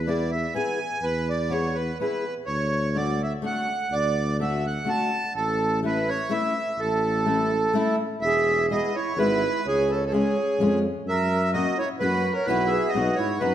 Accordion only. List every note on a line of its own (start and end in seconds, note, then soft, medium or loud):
0.07 0.31 D5 medium
0.31 0.54 E5 medium
0.55 1.05 G#5 medium
1.03 1.29 B4 medium
1.29 1.53 D5 medium
1.51 1.77 C#5 medium
1.75 1.98 B4 medium
2.01 2.34 B4 medium
2.46 2.97 C#5 medium
2.96 3.22 D5 medium
3.23 3.33 E5 medium
3.46 3.95 F#5 medium
3.92 4.37 D5 medium
4.41 4.66 E5 medium
4.66 4.90 F#5 medium
4.89 5.33 A5 medium
5.35 5.80 A4 medium
5.86 6.10 B4 medium
6.09 6.32 C#5 medium
6.31 6.80 E5 medium
6.80 7.96 A4 medium
8.21 8.66 E5 loud
8.71 8.96 D#5 medium
8.95 9.19 C#5 medium
9.18 9.67 B4 loud
9.68 9.91 G#4 medium
9.90 10.05 A4 medium
10.06 10.13 A4 medium
10.12 10.79 G#4 medium
11.08 11.51 E5 loud
11.54 11.78 D#5 medium
11.78 11.89 C#5 medium
12.00 12.33 B4 loud
12.33 12.46 A#4 medium
12.45 12.69 B4 medium
12.66 12.91 E5 medium
12.89 13.17 D#5 medium
13.15 13.41 C#5 medium
13.40 13.54 B4 medium